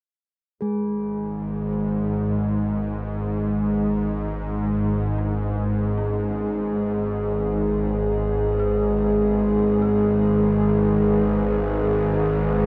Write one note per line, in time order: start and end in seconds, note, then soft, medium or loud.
0.58 12.66 G#1 medium
0.58 12.66 G#2 medium
0.58 12.66 G#3 medium
0.58 12.66 G#4 medium
2.28 12.66 B4 medium
5.18 12.52 D4 soft
5.97 12.66 C#4 medium
8.59 9.81 G#4 medium
9.82 12.66 G#4 soft